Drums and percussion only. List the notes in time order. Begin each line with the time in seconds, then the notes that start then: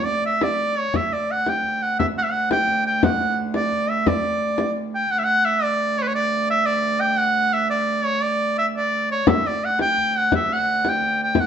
0.41 frame drum
0.94 frame drum
1.12 frame drum
1.46 frame drum
1.64 frame drum
2.00 frame drum
2.51 frame drum
2.68 frame drum
3.03 frame drum
3.20 frame drum
3.54 frame drum
3.72 frame drum
4.06 frame drum
4.58 frame drum
9.27 frame drum
9.46 frame drum
9.79 frame drum
9.98 frame drum
10.32 frame drum
10.50 frame drum
10.85 frame drum
11.01 frame drum
11.35 frame drum